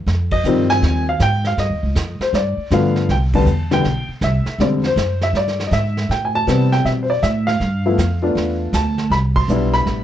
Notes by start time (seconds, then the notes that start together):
0.06 F2, brush sweep, snare
0.31 D#5, kick, ride
0.44 G2 D#3 F3 G3 C4, hi-hat pedal
0.70 G#5, snare
0.82 D#2, brush sweep, snare
1.09 F5
1.20 G#2 G5, snare, hi-hat pedal
1.44 F5, snare
1.57 G2 D#5, brush sweep, snare
1.70 D#2
1.83 C#2
1.95 F2, snare, hi-hat pedal
2.19 C5, muted upright bass stroke, snare
2.33 G2 D5, brush sweep, snare
2.57 muted upright bass stroke
2.71 G2 D3 F3 A3 B3 F5, snare, hi-hat pedal
2.96 snare
3.09 C2 G5, brush sweep, snare
3.33 D3 E3 G3 B3 A5, kick, ride
3.46 E2, hi-hat pedal
3.71 D3 E3 G3 B3 G5, snare
3.84 B1, brush sweep, snare
4.08 muted upright bass stroke
4.21 C2 E5, snare, hi-hat pedal
4.46 snare
4.58 E2 D3 G3 G#3 C4 D5, brush sweep, snare
4.84 C5, snare
4.96 F#2, snare, hi-hat pedal
5.21 E5, snare
5.33 G2 D5, brush sweep, snare
5.48 snare
5.60 snare
5.67 D#5
5.71 G#2 E5, snare, hi-hat pedal
5.97 snare
6.09 A2 G5, brush sweep, snare
6.25 G#5
6.35 A5
6.47 C3 E3 G3 B3 C4, snare, hi-hat pedal
6.72 G5, snare
6.85 B2 E5, brush sweep, snare
7.03 C5
7.10 D5
7.23 A2 E5, snare, hi-hat pedal
7.47 F5, snare
7.60 G2, brush sweep, snare
7.86 F3 A3 B3 E4
7.98 F2, snare, hi-hat pedal
8.22 A3 B3 D4 F4
8.35 E2, brush sweep, snare
8.73 D2 A5, snare, hi-hat pedal
8.98 snare
9.10 C2 B5, brush sweep, snare
9.36 C6, kick, ride
9.48 B1 G3 B3 D4 E4, hi-hat pedal
9.73 B5, snare
9.86 A1, brush sweep, snare